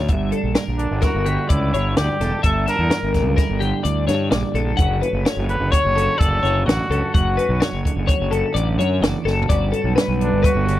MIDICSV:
0, 0, Header, 1, 6, 480
1, 0, Start_track
1, 0, Tempo, 470219
1, 98, Time_signature, 5, 2, 24, 8
1, 11021, End_track
2, 0, Start_track
2, 0, Title_t, "Clean electric guitar"
2, 0, Program_c, 0, 27
2, 90, Note_on_c, 0, 76, 73
2, 327, Note_on_c, 0, 69, 56
2, 333, Note_off_c, 0, 76, 0
2, 560, Note_off_c, 0, 69, 0
2, 560, Note_on_c, 0, 70, 72
2, 1027, Note_off_c, 0, 70, 0
2, 1040, Note_on_c, 0, 70, 68
2, 1283, Note_on_c, 0, 67, 62
2, 1287, Note_off_c, 0, 70, 0
2, 1521, Note_on_c, 0, 74, 69
2, 1529, Note_off_c, 0, 67, 0
2, 1768, Note_off_c, 0, 74, 0
2, 1775, Note_on_c, 0, 73, 68
2, 2008, Note_off_c, 0, 73, 0
2, 2012, Note_on_c, 0, 74, 66
2, 2253, Note_off_c, 0, 74, 0
2, 2254, Note_on_c, 0, 69, 60
2, 2482, Note_on_c, 0, 76, 80
2, 2494, Note_off_c, 0, 69, 0
2, 2718, Note_on_c, 0, 69, 64
2, 2728, Note_off_c, 0, 76, 0
2, 2959, Note_off_c, 0, 69, 0
2, 2963, Note_on_c, 0, 70, 68
2, 3422, Note_off_c, 0, 70, 0
2, 3435, Note_on_c, 0, 70, 71
2, 3678, Note_on_c, 0, 67, 66
2, 3684, Note_off_c, 0, 70, 0
2, 3917, Note_on_c, 0, 74, 70
2, 3926, Note_off_c, 0, 67, 0
2, 4155, Note_off_c, 0, 74, 0
2, 4159, Note_on_c, 0, 73, 69
2, 4395, Note_off_c, 0, 73, 0
2, 4400, Note_on_c, 0, 74, 70
2, 4645, Note_on_c, 0, 69, 69
2, 4646, Note_off_c, 0, 74, 0
2, 4869, Note_on_c, 0, 78, 85
2, 4889, Note_off_c, 0, 69, 0
2, 5120, Note_on_c, 0, 71, 67
2, 5121, Note_off_c, 0, 78, 0
2, 5361, Note_off_c, 0, 71, 0
2, 5361, Note_on_c, 0, 73, 75
2, 5826, Note_off_c, 0, 73, 0
2, 5838, Note_on_c, 0, 73, 75
2, 6079, Note_on_c, 0, 69, 62
2, 6086, Note_off_c, 0, 73, 0
2, 6309, Note_on_c, 0, 74, 77
2, 6326, Note_off_c, 0, 69, 0
2, 6557, Note_off_c, 0, 74, 0
2, 6561, Note_on_c, 0, 73, 71
2, 6800, Note_off_c, 0, 73, 0
2, 6800, Note_on_c, 0, 74, 75
2, 7047, Note_off_c, 0, 74, 0
2, 7050, Note_on_c, 0, 69, 67
2, 7291, Note_on_c, 0, 78, 74
2, 7292, Note_off_c, 0, 69, 0
2, 7526, Note_on_c, 0, 71, 62
2, 7533, Note_off_c, 0, 78, 0
2, 7762, Note_off_c, 0, 71, 0
2, 7762, Note_on_c, 0, 73, 71
2, 8230, Note_off_c, 0, 73, 0
2, 8242, Note_on_c, 0, 73, 75
2, 8486, Note_on_c, 0, 69, 69
2, 8489, Note_off_c, 0, 73, 0
2, 8719, Note_on_c, 0, 74, 81
2, 8731, Note_off_c, 0, 69, 0
2, 8967, Note_off_c, 0, 74, 0
2, 8972, Note_on_c, 0, 73, 70
2, 9212, Note_off_c, 0, 73, 0
2, 9212, Note_on_c, 0, 74, 67
2, 9445, Note_on_c, 0, 69, 69
2, 9455, Note_off_c, 0, 74, 0
2, 9690, Note_on_c, 0, 74, 83
2, 9691, Note_off_c, 0, 69, 0
2, 9923, Note_on_c, 0, 69, 63
2, 9934, Note_off_c, 0, 74, 0
2, 10161, Note_off_c, 0, 69, 0
2, 10165, Note_on_c, 0, 71, 80
2, 10631, Note_off_c, 0, 71, 0
2, 10644, Note_on_c, 0, 71, 70
2, 10882, Note_off_c, 0, 71, 0
2, 10882, Note_on_c, 0, 67, 69
2, 11021, Note_off_c, 0, 67, 0
2, 11021, End_track
3, 0, Start_track
3, 0, Title_t, "Trumpet"
3, 0, Program_c, 1, 56
3, 795, Note_on_c, 1, 62, 72
3, 1055, Note_on_c, 1, 66, 76
3, 1071, Note_off_c, 1, 62, 0
3, 1522, Note_on_c, 1, 64, 73
3, 1537, Note_off_c, 1, 66, 0
3, 2007, Note_on_c, 1, 67, 84
3, 2022, Note_off_c, 1, 64, 0
3, 2480, Note_off_c, 1, 67, 0
3, 2487, Note_on_c, 1, 69, 86
3, 2713, Note_off_c, 1, 69, 0
3, 2739, Note_on_c, 1, 70, 96
3, 3183, Note_off_c, 1, 70, 0
3, 5606, Note_on_c, 1, 71, 92
3, 5831, Note_on_c, 1, 73, 105
3, 5847, Note_off_c, 1, 71, 0
3, 6312, Note_on_c, 1, 69, 94
3, 6328, Note_off_c, 1, 73, 0
3, 6791, Note_off_c, 1, 69, 0
3, 6797, Note_on_c, 1, 66, 80
3, 7252, Note_off_c, 1, 66, 0
3, 7292, Note_on_c, 1, 66, 78
3, 7973, Note_off_c, 1, 66, 0
3, 10428, Note_on_c, 1, 62, 69
3, 10663, Note_on_c, 1, 66, 80
3, 10679, Note_off_c, 1, 62, 0
3, 11021, Note_off_c, 1, 66, 0
3, 11021, End_track
4, 0, Start_track
4, 0, Title_t, "Clean electric guitar"
4, 0, Program_c, 2, 27
4, 0, Note_on_c, 2, 50, 78
4, 86, Note_on_c, 2, 43, 63
4, 345, Note_on_c, 2, 62, 52
4, 797, Note_off_c, 2, 50, 0
4, 809, Note_on_c, 2, 50, 51
4, 1051, Note_on_c, 2, 64, 58
4, 1277, Note_off_c, 2, 50, 0
4, 1289, Note_on_c, 2, 50, 55
4, 1293, Note_off_c, 2, 62, 0
4, 1297, Note_on_c, 2, 62, 50
4, 1757, Note_off_c, 2, 62, 0
4, 1761, Note_on_c, 2, 62, 50
4, 1996, Note_off_c, 2, 43, 0
4, 2008, Note_on_c, 2, 43, 70
4, 2246, Note_off_c, 2, 62, 0
4, 2250, Note_on_c, 2, 62, 54
4, 2462, Note_off_c, 2, 43, 0
4, 2462, Note_off_c, 2, 50, 0
4, 2463, Note_off_c, 2, 64, 0
4, 2479, Note_on_c, 2, 43, 65
4, 2720, Note_off_c, 2, 62, 0
4, 2725, Note_on_c, 2, 62, 51
4, 3205, Note_on_c, 2, 50, 60
4, 3445, Note_on_c, 2, 64, 59
4, 3670, Note_off_c, 2, 50, 0
4, 3682, Note_on_c, 2, 50, 59
4, 3685, Note_off_c, 2, 62, 0
4, 3689, Note_on_c, 2, 62, 54
4, 4166, Note_off_c, 2, 64, 0
4, 4170, Note_off_c, 2, 62, 0
4, 4170, Note_on_c, 2, 62, 56
4, 4283, Note_off_c, 2, 62, 0
4, 4283, Note_on_c, 2, 64, 48
4, 4397, Note_off_c, 2, 43, 0
4, 4410, Note_on_c, 2, 43, 72
4, 4651, Note_on_c, 2, 62, 52
4, 4859, Note_off_c, 2, 50, 0
4, 4863, Note_off_c, 2, 43, 0
4, 4887, Note_on_c, 2, 42, 75
4, 4888, Note_off_c, 2, 64, 0
4, 4891, Note_on_c, 2, 50, 54
4, 4895, Note_on_c, 2, 57, 53
4, 4900, Note_off_c, 2, 62, 0
4, 4904, Note_on_c, 2, 61, 58
4, 4918, Note_on_c, 2, 66, 56
4, 5135, Note_off_c, 2, 61, 0
4, 5140, Note_on_c, 2, 61, 57
4, 5586, Note_off_c, 2, 50, 0
4, 5598, Note_on_c, 2, 50, 60
4, 5849, Note_off_c, 2, 66, 0
4, 5853, Note_on_c, 2, 66, 62
4, 6075, Note_off_c, 2, 42, 0
4, 6079, Note_on_c, 2, 42, 60
4, 6085, Note_off_c, 2, 61, 0
4, 6089, Note_on_c, 2, 61, 59
4, 6560, Note_off_c, 2, 66, 0
4, 6564, Note_on_c, 2, 66, 58
4, 6788, Note_off_c, 2, 42, 0
4, 6800, Note_on_c, 2, 42, 66
4, 7049, Note_off_c, 2, 61, 0
4, 7054, Note_on_c, 2, 61, 52
4, 7259, Note_off_c, 2, 42, 0
4, 7285, Note_on_c, 2, 42, 69
4, 7522, Note_off_c, 2, 61, 0
4, 7527, Note_on_c, 2, 61, 57
4, 7996, Note_off_c, 2, 50, 0
4, 8008, Note_on_c, 2, 50, 58
4, 8246, Note_off_c, 2, 66, 0
4, 8251, Note_on_c, 2, 66, 62
4, 8468, Note_off_c, 2, 57, 0
4, 8479, Note_off_c, 2, 42, 0
4, 8492, Note_on_c, 2, 42, 59
4, 8496, Note_off_c, 2, 61, 0
4, 8500, Note_on_c, 2, 61, 56
4, 8975, Note_off_c, 2, 66, 0
4, 8979, Note_on_c, 2, 66, 59
4, 9209, Note_off_c, 2, 42, 0
4, 9213, Note_on_c, 2, 40, 62
4, 9454, Note_off_c, 2, 40, 0
4, 9458, Note_on_c, 2, 42, 56
4, 9685, Note_off_c, 2, 42, 0
4, 9686, Note_off_c, 2, 50, 0
4, 9689, Note_on_c, 2, 43, 60
4, 9699, Note_on_c, 2, 50, 53
4, 9710, Note_on_c, 2, 59, 55
4, 9712, Note_off_c, 2, 61, 0
4, 9716, Note_on_c, 2, 61, 58
4, 9720, Note_off_c, 2, 66, 0
4, 9724, Note_on_c, 2, 66, 66
4, 9939, Note_off_c, 2, 61, 0
4, 9943, Note_on_c, 2, 61, 51
4, 10405, Note_off_c, 2, 50, 0
4, 10418, Note_on_c, 2, 50, 61
4, 10661, Note_off_c, 2, 61, 0
4, 10665, Note_on_c, 2, 61, 57
4, 10892, Note_off_c, 2, 50, 0
4, 10905, Note_on_c, 2, 50, 61
4, 10906, Note_off_c, 2, 61, 0
4, 10910, Note_on_c, 2, 61, 59
4, 11021, Note_off_c, 2, 43, 0
4, 11021, Note_off_c, 2, 50, 0
4, 11021, Note_off_c, 2, 59, 0
4, 11021, Note_off_c, 2, 61, 0
4, 11021, Note_off_c, 2, 66, 0
4, 11021, End_track
5, 0, Start_track
5, 0, Title_t, "Fingered electric bass"
5, 0, Program_c, 3, 33
5, 93, Note_on_c, 3, 31, 80
5, 317, Note_off_c, 3, 31, 0
5, 443, Note_on_c, 3, 34, 73
5, 560, Note_off_c, 3, 34, 0
5, 693, Note_on_c, 3, 34, 78
5, 916, Note_off_c, 3, 34, 0
5, 929, Note_on_c, 3, 31, 72
5, 1043, Note_off_c, 3, 31, 0
5, 1168, Note_on_c, 3, 31, 70
5, 1393, Note_off_c, 3, 31, 0
5, 1531, Note_on_c, 3, 37, 74
5, 1755, Note_off_c, 3, 37, 0
5, 1763, Note_on_c, 3, 31, 72
5, 1990, Note_off_c, 3, 31, 0
5, 2006, Note_on_c, 3, 38, 74
5, 2121, Note_off_c, 3, 38, 0
5, 2245, Note_on_c, 3, 28, 81
5, 2360, Note_off_c, 3, 28, 0
5, 2488, Note_on_c, 3, 31, 90
5, 2713, Note_off_c, 3, 31, 0
5, 2845, Note_on_c, 3, 40, 79
5, 2960, Note_off_c, 3, 40, 0
5, 3090, Note_on_c, 3, 31, 79
5, 3331, Note_off_c, 3, 31, 0
5, 3331, Note_on_c, 3, 37, 82
5, 3443, Note_off_c, 3, 37, 0
5, 3566, Note_on_c, 3, 31, 78
5, 3791, Note_off_c, 3, 31, 0
5, 3929, Note_on_c, 3, 38, 91
5, 4153, Note_off_c, 3, 38, 0
5, 4165, Note_on_c, 3, 43, 86
5, 4391, Note_off_c, 3, 43, 0
5, 4402, Note_on_c, 3, 34, 75
5, 4519, Note_off_c, 3, 34, 0
5, 4633, Note_on_c, 3, 34, 87
5, 4865, Note_off_c, 3, 34, 0
5, 4890, Note_on_c, 3, 30, 81
5, 5114, Note_off_c, 3, 30, 0
5, 5235, Note_on_c, 3, 30, 83
5, 5355, Note_off_c, 3, 30, 0
5, 5478, Note_on_c, 3, 30, 96
5, 5707, Note_off_c, 3, 30, 0
5, 5715, Note_on_c, 3, 30, 72
5, 5835, Note_off_c, 3, 30, 0
5, 5968, Note_on_c, 3, 30, 71
5, 6193, Note_off_c, 3, 30, 0
5, 6331, Note_on_c, 3, 30, 73
5, 6555, Note_off_c, 3, 30, 0
5, 6563, Note_on_c, 3, 30, 71
5, 6791, Note_off_c, 3, 30, 0
5, 6801, Note_on_c, 3, 33, 76
5, 6919, Note_off_c, 3, 33, 0
5, 7040, Note_on_c, 3, 37, 86
5, 7158, Note_off_c, 3, 37, 0
5, 7295, Note_on_c, 3, 30, 80
5, 7517, Note_off_c, 3, 30, 0
5, 7643, Note_on_c, 3, 35, 88
5, 7760, Note_off_c, 3, 35, 0
5, 7885, Note_on_c, 3, 30, 79
5, 8001, Note_off_c, 3, 30, 0
5, 8130, Note_on_c, 3, 30, 89
5, 8244, Note_off_c, 3, 30, 0
5, 8370, Note_on_c, 3, 30, 72
5, 8595, Note_off_c, 3, 30, 0
5, 8723, Note_on_c, 3, 33, 87
5, 8952, Note_off_c, 3, 33, 0
5, 8962, Note_on_c, 3, 42, 78
5, 9191, Note_off_c, 3, 42, 0
5, 9198, Note_on_c, 3, 30, 74
5, 9318, Note_off_c, 3, 30, 0
5, 9439, Note_on_c, 3, 30, 85
5, 9670, Note_off_c, 3, 30, 0
5, 9692, Note_on_c, 3, 31, 84
5, 9917, Note_off_c, 3, 31, 0
5, 10044, Note_on_c, 3, 35, 81
5, 10162, Note_off_c, 3, 35, 0
5, 10290, Note_on_c, 3, 35, 91
5, 10516, Note_off_c, 3, 35, 0
5, 10533, Note_on_c, 3, 31, 79
5, 10647, Note_off_c, 3, 31, 0
5, 10770, Note_on_c, 3, 31, 74
5, 10997, Note_off_c, 3, 31, 0
5, 11021, End_track
6, 0, Start_track
6, 0, Title_t, "Drums"
6, 84, Note_on_c, 9, 42, 67
6, 92, Note_on_c, 9, 36, 96
6, 186, Note_off_c, 9, 42, 0
6, 194, Note_off_c, 9, 36, 0
6, 327, Note_on_c, 9, 42, 51
6, 429, Note_off_c, 9, 42, 0
6, 560, Note_on_c, 9, 42, 70
6, 563, Note_on_c, 9, 38, 93
6, 662, Note_off_c, 9, 42, 0
6, 665, Note_off_c, 9, 38, 0
6, 807, Note_on_c, 9, 42, 54
6, 909, Note_off_c, 9, 42, 0
6, 1038, Note_on_c, 9, 42, 68
6, 1041, Note_on_c, 9, 38, 28
6, 1048, Note_on_c, 9, 36, 81
6, 1140, Note_off_c, 9, 42, 0
6, 1144, Note_off_c, 9, 38, 0
6, 1150, Note_off_c, 9, 36, 0
6, 1286, Note_on_c, 9, 42, 65
6, 1388, Note_off_c, 9, 42, 0
6, 1528, Note_on_c, 9, 42, 86
6, 1532, Note_on_c, 9, 36, 92
6, 1630, Note_off_c, 9, 42, 0
6, 1635, Note_off_c, 9, 36, 0
6, 1778, Note_on_c, 9, 42, 54
6, 1880, Note_off_c, 9, 42, 0
6, 2006, Note_on_c, 9, 42, 72
6, 2010, Note_on_c, 9, 38, 95
6, 2109, Note_off_c, 9, 42, 0
6, 2112, Note_off_c, 9, 38, 0
6, 2254, Note_on_c, 9, 42, 58
6, 2257, Note_on_c, 9, 38, 30
6, 2356, Note_off_c, 9, 42, 0
6, 2359, Note_off_c, 9, 38, 0
6, 2486, Note_on_c, 9, 42, 81
6, 2491, Note_on_c, 9, 36, 98
6, 2588, Note_off_c, 9, 42, 0
6, 2594, Note_off_c, 9, 36, 0
6, 2730, Note_on_c, 9, 42, 59
6, 2733, Note_on_c, 9, 38, 30
6, 2832, Note_off_c, 9, 42, 0
6, 2835, Note_off_c, 9, 38, 0
6, 2968, Note_on_c, 9, 42, 72
6, 2971, Note_on_c, 9, 38, 93
6, 3070, Note_off_c, 9, 42, 0
6, 3073, Note_off_c, 9, 38, 0
6, 3207, Note_on_c, 9, 42, 48
6, 3209, Note_on_c, 9, 36, 64
6, 3210, Note_on_c, 9, 38, 29
6, 3309, Note_off_c, 9, 42, 0
6, 3311, Note_off_c, 9, 36, 0
6, 3312, Note_off_c, 9, 38, 0
6, 3448, Note_on_c, 9, 42, 67
6, 3449, Note_on_c, 9, 36, 82
6, 3451, Note_on_c, 9, 38, 28
6, 3550, Note_off_c, 9, 42, 0
6, 3551, Note_off_c, 9, 36, 0
6, 3553, Note_off_c, 9, 38, 0
6, 3692, Note_on_c, 9, 42, 55
6, 3794, Note_off_c, 9, 42, 0
6, 3927, Note_on_c, 9, 42, 75
6, 4029, Note_off_c, 9, 42, 0
6, 4168, Note_on_c, 9, 42, 49
6, 4171, Note_on_c, 9, 38, 29
6, 4270, Note_off_c, 9, 42, 0
6, 4273, Note_off_c, 9, 38, 0
6, 4405, Note_on_c, 9, 42, 68
6, 4408, Note_on_c, 9, 38, 96
6, 4507, Note_off_c, 9, 42, 0
6, 4510, Note_off_c, 9, 38, 0
6, 4646, Note_on_c, 9, 42, 52
6, 4748, Note_off_c, 9, 42, 0
6, 4886, Note_on_c, 9, 42, 71
6, 4887, Note_on_c, 9, 36, 101
6, 4988, Note_off_c, 9, 42, 0
6, 4989, Note_off_c, 9, 36, 0
6, 5132, Note_on_c, 9, 42, 53
6, 5234, Note_off_c, 9, 42, 0
6, 5369, Note_on_c, 9, 42, 76
6, 5372, Note_on_c, 9, 38, 95
6, 5471, Note_off_c, 9, 42, 0
6, 5475, Note_off_c, 9, 38, 0
6, 5604, Note_on_c, 9, 42, 53
6, 5706, Note_off_c, 9, 42, 0
6, 5851, Note_on_c, 9, 36, 92
6, 5852, Note_on_c, 9, 42, 77
6, 5953, Note_off_c, 9, 36, 0
6, 5954, Note_off_c, 9, 42, 0
6, 6102, Note_on_c, 9, 42, 66
6, 6204, Note_off_c, 9, 42, 0
6, 6335, Note_on_c, 9, 36, 104
6, 6338, Note_on_c, 9, 42, 84
6, 6437, Note_off_c, 9, 36, 0
6, 6440, Note_off_c, 9, 42, 0
6, 6583, Note_on_c, 9, 42, 52
6, 6685, Note_off_c, 9, 42, 0
6, 6827, Note_on_c, 9, 42, 79
6, 6830, Note_on_c, 9, 38, 101
6, 6929, Note_off_c, 9, 42, 0
6, 6932, Note_off_c, 9, 38, 0
6, 7062, Note_on_c, 9, 42, 56
6, 7164, Note_off_c, 9, 42, 0
6, 7296, Note_on_c, 9, 36, 109
6, 7304, Note_on_c, 9, 42, 73
6, 7398, Note_off_c, 9, 36, 0
6, 7406, Note_off_c, 9, 42, 0
6, 7541, Note_on_c, 9, 42, 57
6, 7643, Note_off_c, 9, 42, 0
6, 7774, Note_on_c, 9, 42, 75
6, 7777, Note_on_c, 9, 38, 95
6, 7876, Note_off_c, 9, 42, 0
6, 7879, Note_off_c, 9, 38, 0
6, 8017, Note_on_c, 9, 36, 65
6, 8029, Note_on_c, 9, 42, 52
6, 8119, Note_off_c, 9, 36, 0
6, 8131, Note_off_c, 9, 42, 0
6, 8255, Note_on_c, 9, 36, 85
6, 8258, Note_on_c, 9, 42, 66
6, 8357, Note_off_c, 9, 36, 0
6, 8360, Note_off_c, 9, 42, 0
6, 8496, Note_on_c, 9, 42, 58
6, 8598, Note_off_c, 9, 42, 0
6, 8739, Note_on_c, 9, 42, 83
6, 8841, Note_off_c, 9, 42, 0
6, 8985, Note_on_c, 9, 42, 50
6, 9087, Note_off_c, 9, 42, 0
6, 9221, Note_on_c, 9, 42, 73
6, 9224, Note_on_c, 9, 38, 99
6, 9323, Note_off_c, 9, 42, 0
6, 9326, Note_off_c, 9, 38, 0
6, 9465, Note_on_c, 9, 38, 53
6, 9567, Note_off_c, 9, 38, 0
6, 9620, Note_on_c, 9, 43, 70
6, 9695, Note_on_c, 9, 36, 97
6, 9696, Note_on_c, 9, 42, 76
6, 9722, Note_off_c, 9, 43, 0
6, 9797, Note_off_c, 9, 36, 0
6, 9798, Note_off_c, 9, 42, 0
6, 9936, Note_on_c, 9, 42, 62
6, 10038, Note_off_c, 9, 42, 0
6, 10183, Note_on_c, 9, 42, 83
6, 10186, Note_on_c, 9, 38, 95
6, 10285, Note_off_c, 9, 42, 0
6, 10288, Note_off_c, 9, 38, 0
6, 10423, Note_on_c, 9, 42, 58
6, 10525, Note_off_c, 9, 42, 0
6, 10660, Note_on_c, 9, 36, 97
6, 10666, Note_on_c, 9, 42, 77
6, 10762, Note_off_c, 9, 36, 0
6, 10768, Note_off_c, 9, 42, 0
6, 10905, Note_on_c, 9, 42, 64
6, 11007, Note_off_c, 9, 42, 0
6, 11021, End_track
0, 0, End_of_file